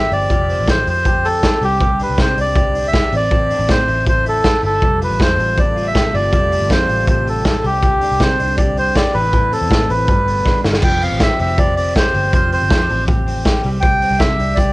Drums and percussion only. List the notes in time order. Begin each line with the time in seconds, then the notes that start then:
0.11 open hi-hat
0.30 kick, closed hi-hat
0.49 open hi-hat
0.68 kick, snare, closed hi-hat
0.87 open hi-hat
1.05 kick, closed hi-hat
1.25 open hi-hat
1.43 kick, snare, closed hi-hat
1.62 open hi-hat
1.80 kick, closed hi-hat
1.99 open hi-hat
2.18 kick, snare, closed hi-hat
2.38 open hi-hat
2.56 kick, closed hi-hat
2.75 open hi-hat
2.94 kick, snare, closed hi-hat
3.12 open hi-hat
3.31 kick, closed hi-hat
3.50 open hi-hat
3.69 kick, snare, closed hi-hat
3.88 open hi-hat
4.06 kick, closed hi-hat
4.26 open hi-hat
4.44 kick, snare, closed hi-hat
4.63 open hi-hat
4.82 kick, closed hi-hat
5.02 open hi-hat
5.20 kick, snare, closed hi-hat
5.39 open hi-hat
5.58 kick, closed hi-hat
5.77 open hi-hat
5.95 kick, snare, closed hi-hat
6.14 open hi-hat
6.33 kick, closed hi-hat
6.52 open hi-hat
6.70 kick, snare, closed hi-hat
6.89 open hi-hat
7.07 kick, closed hi-hat
7.27 open hi-hat
7.45 kick, snare, closed hi-hat
7.64 open hi-hat
7.82 kick, closed hi-hat
8.01 open hi-hat
8.20 kick, snare, closed hi-hat
8.40 open hi-hat
8.58 kick, closed hi-hat
8.77 open hi-hat
8.96 kick, snare, closed hi-hat
9.15 open hi-hat
9.33 kick, closed hi-hat
9.53 open hi-hat
9.71 kick, snare, closed hi-hat
9.90 open hi-hat
10.08 kick, closed hi-hat
10.28 open hi-hat
10.46 kick, snare
10.64 snare
10.73 snare
10.82 kick, crash
11.02 open hi-hat
11.20 kick, snare, closed hi-hat
11.39 open hi-hat
11.58 kick, closed hi-hat
11.77 open hi-hat
11.96 kick, snare, closed hi-hat
12.14 open hi-hat
12.33 kick, closed hi-hat
12.52 open hi-hat
12.70 kick, snare, closed hi-hat
12.89 open hi-hat
13.08 kick, closed hi-hat
13.28 open hi-hat
13.45 kick, snare, closed hi-hat
13.63 open hi-hat
13.82 kick, closed hi-hat
14.02 open hi-hat
14.20 kick, snare, closed hi-hat
14.39 open hi-hat
14.57 kick, closed hi-hat